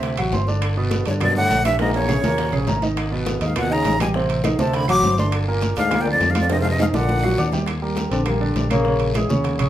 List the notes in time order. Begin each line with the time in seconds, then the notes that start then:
Already playing: D2 C3 C4 C5 E5
0.03 high bongo, high conga, high timbale, long guiro
0.17 A1 F#3 F#4 F#5, high bongo, high conga, high timbale, claves
0.32 G1 C4 C5 C6, high bongo, low bongo, high conga, low timbale, short guiro
0.47 D3 D4 D5, high bongo, high conga, short guiro
0.62 high bongo, high conga, high timbale, long guiro, claves
0.77 B2 B3 B4, high conga
0.91 high bongo, high conga, high timbale, low timbale, short guiro
1.06 E2 G2 D3 D4 C#5 D5, high bongo, high conga, high timbale, short guiro
1.20 F#2 B2 B3 B4 D5, high bongo, high conga, low conga, high timbale, long guiro, claves
1.35 A2 D3 D4 D5 F#5, high bongo, high conga
1.50 A#1, high bongo, low bongo, high conga, high timbale, low timbale, short guiro
1.65 G2 E3 E4 E5, high bongo, high conga, high timbale, short guiro, claves
1.79 G#2 A#2 A#3 A#4 D#5, high bongo, high conga, high timbale, long guiro
1.94 E2 C#5, high conga, high timbale
2.08 C#3 C#4 C#5, high bongo, high conga, high timbale, short guiro, claves
2.23 D#2 A#2 A#3 A#4, high bongo, high conga, low timbale, short guiro
2.38 high bongo, low timbale, long guiro
2.53 A#1 C#3 C#4 C#5, high bongo, high conga, low timbale, claves
2.67 G#1 A#3 A#4 A#5, high bongo, low bongo, high conga, low timbale, short guiro
2.82 D#3 D#4 D#5, high bongo, high conga, low timbale, short guiro
2.97 high bongo, high conga, high timbale, long guiro, claves
3.11 B2 B3 B4, high conga
3.26 high bongo, high conga, high timbale, low timbale, short guiro
3.41 D#2 G#2 D#3 D#4 D#5 F5, high bongo, high conga, high timbale, short guiro
3.56 A#2 B2 B3 B4 F#5, high bongo, high conga, low conga, high timbale, long guiro, claves
3.70 C#3 D#3 D#4 D#5 A#5, high bongo, high conga
3.85 A1, high bongo, low bongo, high conga, high timbale, low timbale, short guiro
4.00 B2 G3 G4 G5 G#5, high bongo, high conga, high timbale, short guiro, claves
4.14 C3 C4 C5, high bongo, high conga, long guiro
4.30 high conga, high timbale
4.44 D#3 D#4 D#5, high bongo, high conga, high timbale, low timbale, short guiro, claves
4.59 D2 C3 C4 C5 A5, high bongo, high conga, short guiro
4.74 D3 B5, high bongo, high conga, high timbale, long guiro
4.88 A1 F#3 F#4 F#5 D6, high bongo, high conga, high timbale, claves
5.03 G1 C4 C5 C6, high bongo, low bongo, high conga, low timbale, short guiro
5.18 D3 E3 D4 D5 C6, high bongo, high conga, short guiro
5.32 high bongo, high conga, high timbale, long guiro, claves
5.48 A#2 A#3 A#4, high conga
5.62 high bongo, high conga, high timbale, low timbale, short guiro
5.77 D2 G#2 D3 D4 D5 F5, high bongo, high conga, high timbale, short guiro
5.91 A#2 A#3 A#4, high bongo, high conga, low conga, high timbale, long guiro, claves
6.01 A#2 G5
6.06 D3 D4 D5, high bongo, high conga
6.11 F2 D5
6.21 F2, high bongo, low bongo, high conga, high timbale, low timbale, short guiro
6.30 G#2 F5
6.35 F3 F4 F5, high bongo, high conga, high timbale, short guiro, claves
6.40 F2 D5
6.49 G2 C3 C4 C5 D#5, high bongo, high conga, high timbale, long guiro
6.60 G#2 F5
6.65 high bongo, high conga, high timbale
6.70 G2 D#5
6.79 G#2 D#3 D#4 D#5 F5, low bongo, high conga, high timbale, short guiro, claves
6.93 A#1 A#2 D3 D4 D5 F#5, high bongo, high conga, high timbale, short guiro
7.09 high conga, low timbale, long guiro
7.23 F#3 F#4 F#5, low bongo, claves
7.38 D#2 D4 D5 D6, low bongo, low conga, short guiro
7.52 G3 G4 G5, low bongo, low conga, low timbale, short guiro
7.66 high bongo, high conga, high timbale, long guiro, claves
7.82 G3 G4 A#4, high conga
7.96 high bongo, high conga, high timbale, low timbale, short guiro
8.11 A#1 D3 C4 D4 D5, high bongo, high conga, high timbale, short guiro
8.26 G3 A#3 G4 A#4, high bongo, high conga, low conga, high timbale, long guiro, claves
8.41 D3 G3 D4 D5, high bongo, high conga
8.56 A#1, high bongo, low bongo, high conga, high timbale, low timbale, short guiro
8.70 C#3 A#3 C#4 C#5, high bongo, high conga, high timbale, short guiro, claves
8.85 C#3 C#4 C#5, high bongo, high conga, long guiro
9.00 high conga, high timbale
9.15 E3 G#3 E4 G#4, high bongo, high conga, high timbale, low timbale, short guiro, claves
9.29 D#2 C#3 C#4 C#5, high bongo, high conga, short guiro
9.44 high bongo, high conga, high timbale, long guiro
9.58 A#1 C#3 C#4 C#5, high bongo, high conga, high timbale, claves